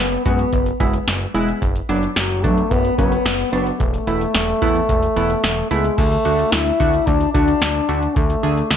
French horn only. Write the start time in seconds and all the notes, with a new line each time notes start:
Already playing: B3
0.26 B3
2.17 F#3
2.44 A3
2.71 B3
2.98 B3
3.52 B3
3.80 A3
5.71 G#3
5.98 A3
6.52 E4
7.07 D4
7.34 D4
8.16 A3